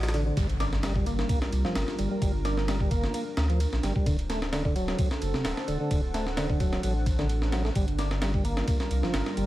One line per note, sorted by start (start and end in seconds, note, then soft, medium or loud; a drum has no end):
0.00 0.31 A1 loud
0.00 0.33 D4 medium
0.00 0.33 A4 medium
0.00 0.33 C5 medium
0.00 0.33 F#5 medium
0.00 snare medium
0.00 ride medium
0.09 snare medium
0.09 ride medium
0.14 0.24 D3 medium
0.14 snare soft
0.14 ride medium
0.26 0.36 D3 medium
0.37 1.23 G1 loud
0.37 4.02 G3 medium
0.37 0.47 G3 medium
0.37 9.46 D4 medium
0.37 4.02 F4 medium
0.37 4.02 A#4 loud
0.37 kick loud
0.37 ride medium
0.37 impact medium
0.49 ride soft
0.60 0.72 D4 medium
0.60 snare medium
0.60 ride medium
0.73 snare soft
0.83 0.93 G3 medium
0.83 snare loud
0.83 ride medium
0.96 1.05 G3 medium
0.96 kick loud
1.06 1.28 A#3 medium
1.06 ride medium
1.19 snare medium
1.29 1.39 A#3 medium
1.29 kick loud
1.29 ride medium
1.42 snare medium
1.52 1.64 C2 medium
1.52 ride medium
1.65 1.73 G1 soft
1.65 1.75 F3 medium
1.65 snare soft
1.75 1.84 G1 medium
1.75 snare loud
1.75 ride medium
1.88 snare soft
1.99 2.07 G1 medium
1.99 2.09 G3 medium
1.99 ride medium
2.11 2.21 G3 medium
2.22 3.08 G1 loud
2.22 2.32 G3 medium
2.22 kick loud
2.22 ride medium
2.45 2.57 D4 medium
2.45 snare soft
2.45 ride medium
2.57 snare soft
2.68 2.78 G3 medium
2.68 snare loud
2.68 ride medium
2.80 2.90 G3 medium
2.80 kick loud
2.91 3.13 A#3 medium
2.91 kick loud
2.91 ride medium
3.03 snare soft
3.14 3.24 A#3 medium
3.14 ride medium
3.37 3.66 D2 loud
3.37 snare loud
3.37 ride medium
3.50 3.60 F3 medium
3.50 ride soft
3.60 ride medium
3.72 3.80 A#1 medium
3.72 snare soft
3.83 3.91 G1 medium
3.83 3.93 G3 medium
3.83 snare soft
3.83 ride medium
3.96 4.06 G3 medium
3.96 kick loud
4.06 4.93 D1 loud
4.06 4.16 D3 medium
4.06 7.72 A4 medium
4.06 7.72 C5 medium
4.06 7.72 F#5 medium
4.06 kick loud
4.06 ride medium
4.19 ride soft
4.30 4.41 A3 medium
4.30 snare medium
4.30 ride medium
4.42 snare medium
4.53 4.63 D3 medium
4.53 snare loud
4.53 ride medium
4.65 4.75 D3 medium
4.65 kick medium
4.76 4.98 F#3 medium
4.76 ride medium
4.88 snare medium
4.99 5.09 F#3 medium
4.99 kick loud
4.99 ride medium
5.11 snare medium
5.22 5.33 F#1 medium
5.22 ride medium
5.34 5.43 D1 soft
5.34 5.44 C3 medium
5.34 snare soft
5.45 5.53 D1 medium
5.45 snare loud
5.45 ride medium
5.57 snare soft
5.68 5.76 D1 medium
5.68 5.78 D3 medium
5.68 ride medium
5.80 5.90 D3 medium
5.91 6.77 D1 loud
5.91 6.01 D3 medium
5.91 kick loud
5.91 ride medium
6.14 6.26 A3 medium
6.14 snare soft
6.14 ride medium
6.26 snare soft
6.37 6.47 D3 medium
6.37 snare loud
6.37 ride medium
6.50 6.59 D3 medium
6.50 kick loud
6.60 6.82 F#3 medium
6.60 kick loud
6.60 ride medium
6.73 snare soft
6.83 7.70 A1 loud
6.83 6.93 F#3 medium
6.83 ride medium
7.06 kick loud
7.06 ride medium
7.19 7.27 D3 loud
7.19 snare soft
7.29 ride medium
7.42 snare soft
7.52 7.63 F#3 medium
7.52 snare loud
7.52 ride medium
7.65 7.70 A3 medium
7.65 snare soft
7.75 8.62 G1 loud
7.75 7.86 G3 medium
7.75 9.46 G3 medium
7.75 9.46 F4 medium
7.75 9.46 A#4 medium
7.75 kick loud
7.75 ride medium
7.88 ride soft
7.98 8.10 D4 medium
7.98 snare medium
7.98 ride medium
8.11 snare medium
8.22 8.32 G3 medium
8.22 snare loud
8.22 ride medium
8.34 8.44 G3 medium
8.34 kick loud
8.45 8.67 A#3 medium
8.45 ride medium
8.57 snare medium
8.68 8.78 A#3 medium
8.68 kick loud
8.68 ride medium
8.80 snare medium
8.91 9.02 C2 medium
8.91 ride medium
9.03 9.12 G1 soft
9.03 9.13 F3 medium
9.03 snare soft
9.14 9.22 G1 medium
9.14 snare loud
9.14 ride medium
9.26 snare soft
9.37 9.45 G1 medium
9.37 9.46 G3 medium
9.37 ride medium